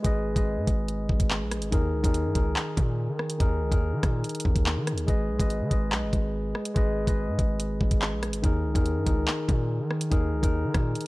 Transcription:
Already playing: G#3 G#4 B4 D#5
0.03 G#1 G#3 G#4 B4 D#5, kick, closed hi-hat
0.34 G#1 G#3 G#4 B4 D#5, kick, closed hi-hat
0.57 G#2
0.67 G#1, kick, closed hi-hat
0.88 closed hi-hat
1.09 G#1, kick
1.20 kick, closed hi-hat
1.31 clap
1.41 A#1
1.51 cross-stick, closed hi-hat
1.57 G#1
1.62 closed hi-hat
1.71 D#2 D#3 D#4 G#4 A#4, kick, closed hi-hat
1.93 C#2
2.02 D#2 D#3 D#4 G#4 A#4, kick, closed hi-hat
2.14 closed hi-hat
2.25 G2
2.33 C#2 D#3 D#4 G#4 A#4, kick, closed hi-hat
2.56 clap
2.77 A#2, kick, closed hi-hat
3.09 D#3
3.19 cross-stick
3.30 closed hi-hat
3.38 D#2 D#3 D#4 G#4 A#4, kick, closed hi-hat
3.61 C#2
3.70 D#2 D#3 D#4 G#4 A#4, kick, closed hi-hat
3.92 D#3
4.03 A#2, kick, cross-stick, closed hi-hat
4.24 closed hi-hat
4.29 closed hi-hat
4.35 closed hi-hat
4.40 closed hi-hat
4.45 D#2, kick
4.56 kick, closed hi-hat
4.66 clap
4.76 D#3
4.87 cross-stick, closed hi-hat
4.92 D#2
4.98 closed hi-hat
5.06 G#1 G#3 G#4 B4 D#5, kick, closed hi-hat
5.29 B1
5.38 G#1 G#3 G#4 B4 D#5, kick, closed hi-hat
5.50 closed hi-hat
5.61 D#3
5.69 G#1 G#3 G#4 B4 D#5, kick, closed hi-hat
5.92 B1, clap
6.02 G#1
6.13 G#1, kick, closed hi-hat
6.55 cross-stick
6.65 closed hi-hat
6.74 G#1 G#3 G#4 B4 D#5, kick, closed hi-hat
7.06 G#1 G#3 G#4 B4 D#5, kick, closed hi-hat
7.28 G#2
7.39 G#1, kick, closed hi-hat
7.60 closed hi-hat
7.81 G#1, kick
7.91 kick, closed hi-hat
8.02 clap
8.12 A#1
8.23 cross-stick, closed hi-hat
8.28 G#1
8.33 closed hi-hat
8.42 D#2 D#3 D#4 G#4 A#4, kick, closed hi-hat
8.65 C#2
8.74 D#2 D#3 D#4 G#4 A#4, kick, closed hi-hat
8.86 closed hi-hat
8.96 G2
9.05 C#2 D#3 D#4 G#4 A#4, kick, closed hi-hat
9.28 clap
9.49 A#2, kick, closed hi-hat
9.80 D#3
9.91 cross-stick
10.01 closed hi-hat
10.10 D#2 D#3 D#4 G#4 A#4, kick, closed hi-hat
10.32 C#2
10.41 D#2 D#3 D#4 G#4 A#4, kick, closed hi-hat
10.64 D#3
10.74 A#2, kick, cross-stick, closed hi-hat
10.95 closed hi-hat
11.01 closed hi-hat

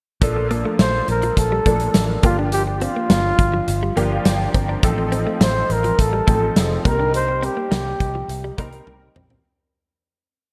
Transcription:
0.21 A#1 F3 A#3 D4 A4, kick, closed hi-hat
0.36 muted clean electric guitar stroke
0.51 A#3, closed hi-hat
0.65 A3
0.79 A#1 A3 C5, snare, closed hi-hat
1.08 A#1 A#4, muted clean electric guitar stroke, closed hi-hat
1.22 F3, closed hi-hat
1.37 A#1 A4, muted clean electric guitar stroke, kick, closed hi-hat
1.52 G3
1.65 A#1 F3 A3 A#3 D4 A4, kick, closed hi-hat
1.80 closed hi-hat
1.94 A1, muted clean electric guitar stroke, snare, closed hi-hat
2.23 G1 F3 A#3 D4 F4 G4, kick, closed hi-hat
2.39 D4
2.52 G4, closed hi-hat
2.67 muted clean electric guitar stroke
2.75 G4
2.81 C4 F4, closed hi-hat
2.96 A#3
3.10 G1 A#3, snare, closed hi-hat
3.39 G1, muted clean electric guitar stroke, kick, closed hi-hat
3.54 F3
3.68 G1, muted clean electric guitar stroke, closed hi-hat
3.83 G3
3.96 G1 F3 A#3 D4 G4 F5, closed hi-hat
4.25 G1 G5, muted clean electric guitar stroke, snare, closed hi-hat
4.54 G1 C4 A#5, kick, closed hi-hat
4.69 D4
4.83 A1 F3 C4 D#4 A4, kick, closed hi-hat
4.98 muted clean electric guitar stroke
5.12 C4, closed hi-hat
5.27 A3
5.41 A1 A3 C5, snare, closed hi-hat
5.70 A1 A#4, muted clean electric guitar stroke, closed hi-hat
5.84 F3, closed hi-hat
5.99 A1 A4, muted clean electric guitar stroke, kick, closed hi-hat
6.13 G3
6.27 A1 F3 A3 C4 D#4 G#4, kick, closed hi-hat
6.35 A4
6.56 F1, muted clean electric guitar stroke, snare, closed hi-hat
6.85 C2 G3 A#3 C4 D#4 A#4, kick, closed hi-hat
6.99 D4
7.14 C5, closed hi-hat
7.28 muted clean electric guitar stroke
7.43 C4 G4, closed hi-hat
7.57 A#3
7.71 C2 A#3, snare, closed hi-hat
8.00 C2, muted clean electric guitar stroke, kick, closed hi-hat
8.15 F3
8.28 C2, muted clean electric guitar stroke, closed hi-hat
8.44 G3
8.57 C2 G3 A#3 C4 D#4 A#4, kick, closed hi-hat
8.72 closed hi-hat
8.87 C2, muted clean electric guitar stroke, high tom
9.16 A#1 C4, mid tom
9.30 C4, floor tom

